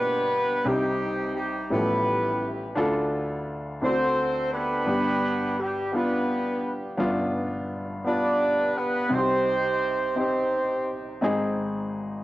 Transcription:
Already playing: upright piano G1 G2 B2 A#3 B3 D4 F4 G4, horn section B3 D4 G4 B4
0.64 upright piano C2 C3 C4 D4 G4, horn section G3 C4 D#4 G4
0.72 upright piano D#4
1.36 horn section G3 G4
1.70 upright piano A1 A2 F3 G3 C#4 E4 A4, horn section B3 E4 G4 B4
2.75 upright piano D2 D3 D4 F4 A4
3.81 upright piano D2 D3 C4 D4 E4 A4 D5, horn section C4 F#4 A4 C5
3.89 upright piano F#4
4.53 horn section B3 D4 G4 B4
4.85 upright piano G1 G2 B3 D4 G4
5.59 horn section G3 G4
5.92 upright piano B3 D4 F4, horn section B3 D4 G4 B4
6.97 upright piano G1 G2 B3 D4 F4
8.04 upright piano B3 D4 F4, horn section D4 G4 B4 D5
8.78 horn section B3 B4
9.09 upright piano C2 C3 C4 D#4 F#4, horn section C4 D#4 G4 C5
9.18 upright piano G4
10.15 upright piano C4 D#4 G4, horn section C4 D#4 G4 C5
11.21 upright piano G#1 G#2 C4 D#4 G#4

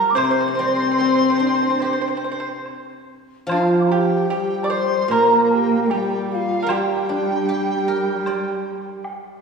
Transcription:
Already playing: guzheng F3, cello G3, pipa A#4, dizi A#5
0.10 dizi D6
0.15 guzheng C3, cello C4, pipa C5, dizi C6, high woodblock
0.25 pipa C5
0.31 pipa C5
0.41 pipa C5
0.48 pipa C5
0.55 pipa C5
0.59 guzheng G3, pipa C5
0.68 pipa C5
0.76 pipa C5
0.82 pipa C5
0.91 pipa C5
0.99 guzheng C4, pipa C5
1.05 pipa C5
1.15 pipa C5
1.30 pipa C5
1.38 guzheng D4, pipa C5
1.47 pipa C5
1.55 pipa C5
1.63 pipa C5
1.70 pipa C5
1.79 guzheng G4, pipa C5, high woodblock
1.85 pipa C5
1.93 pipa C5
2.01 pipa C5
2.08 pipa C5
2.17 pipa C5
2.24 pipa C5
2.32 pipa C5
2.40 pipa C5
2.66 high woodblock
3.47 guzheng F3, cello F3, xiao F4, dizi F5, high woodblock
3.51 pipa F4
3.73 dizi F5 G5
3.80 dizi C6 D6
3.87 xiao G4, dizi A#5
3.91 pipa G4, dizi G5
4.30 cello G3, xiao G4, pipa G4, dizi G5
4.64 pipa D5, dizi D6
4.70 pipa C5, xiao D5, dizi C6
4.75 xiao C5
5.08 guzheng A#2, cello A#3, xiao A#4, pipa A#4, dizi A#5, high woodblock
5.44 dizi A#5
5.51 xiao A#4, dizi G5
5.55 xiao G4
5.84 xiao A#4
5.89 cello G3, xiao G4, pipa G4, dizi G5, low woodblock
6.23 dizi G5
6.31 xiao G4, dizi F5
6.35 xiao F4
6.62 pipa A#4
6.66 guzheng G3, cello G3, pipa G4, high woodblock
6.71 xiao G4, dizi G5
7.09 guzheng D4
7.49 guzheng G4
7.88 guzheng A#4
8.26 guzheng D5, high woodblock
9.04 low woodblock

